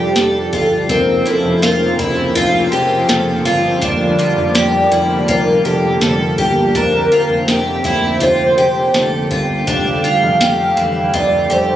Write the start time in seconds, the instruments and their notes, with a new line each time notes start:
Already playing: analog synth bass F1, analog synth pad F3 G3 D4 G4, twelve-string acoustic guitar G4, soft synth lead G4
0.16 analog synth bass F1, twelve-string acoustic guitar A4, snare, closed hi-hat
0.53 analog synth bass G1, twelve-string acoustic guitar F4, soft synth lead A4, kick, closed hi-hat
0.89 analog synth bass F1, analog synth pad C#3 F3 A#3 C4, twelve-string acoustic guitar C4, soft synth lead A#4, kick, closed hi-hat
1.26 twelve-string acoustic guitar E4, soft synth lead A4, closed hi-hat
1.44 analog synth bass F1
1.62 analog synth bass F1, twelve-string acoustic guitar F4, soft synth lead A#4, snare, closed hi-hat
1.99 analog synth bass F1, twelve-string acoustic guitar E4, kick, closed hi-hat
2.35 analog synth bass F1, twelve-string acoustic guitar F4, kick, closed hi-hat
2.72 analog synth bass F1, twelve-string acoustic guitar G4, closed hi-hat
3.09 analog synth bass F1, twelve-string acoustic guitar A4, snare, closed hi-hat
3.45 analog synth bass G1, twelve-string acoustic guitar F4, closed hi-hat
3.82 analog synth bass F1, analog synth pad D3 G3, twelve-string acoustic guitar D4, soft synth lead D5, kick, closed hi-hat
4.19 twelve-string acoustic guitar F4, closed hi-hat
4.37 analog synth bass F1
4.55 analog synth bass F1, twelve-string acoustic guitar G4, snare, closed hi-hat
4.92 analog synth bass F1, twelve-string acoustic guitar E4, closed hi-hat
5.28 analog synth bass F1, twelve-string acoustic guitar F4, soft synth lead A#4, kick, closed hi-hat
5.65 analog synth bass F1, twelve-string acoustic guitar G4, soft synth lead A4, closed hi-hat
6.01 analog synth bass F1, twelve-string acoustic guitar A4, snare, closed hi-hat
6.38 analog synth bass G1, twelve-string acoustic guitar G4, kick, closed hi-hat
6.75 analog synth bass F1, analog synth pad C4 G4, twelve-string acoustic guitar D4, soft synth lead A#4, kick, closed hi-hat
7.12 twelve-string acoustic guitar F4, closed hi-hat
7.30 analog synth bass F1
7.48 analog synth bass F1, twelve-string acoustic guitar G4, snare, closed hi-hat
7.84 analog synth bass F1, twelve-string acoustic guitar E4, kick, closed hi-hat
8.20 analog synth bass F1, twelve-string acoustic guitar F4, soft synth lead C5, kick, closed hi-hat
8.58 analog synth bass F1, twelve-string acoustic guitar G4, closed hi-hat
8.94 analog synth bass F1, twelve-string acoustic guitar A4, snare, closed hi-hat
9.31 analog synth bass G1, twelve-string acoustic guitar F4, kick, closed hi-hat
9.67 analog synth bass F1, analog synth pad G3 A3, twelve-string acoustic guitar D4, soft synth lead F5, kick, closed hi-hat
10.04 twelve-string acoustic guitar F4, closed hi-hat
10.23 analog synth bass F1
10.41 analog synth bass F1, twelve-string acoustic guitar G4, snare, closed hi-hat
10.77 analog synth bass F1, twelve-string acoustic guitar E3, closed hi-hat
11.14 analog synth bass F1, twelve-string acoustic guitar F4, soft synth lead D5, kick, closed hi-hat
11.50 analog synth bass F1, twelve-string acoustic guitar G4, soft synth lead C5, closed hi-hat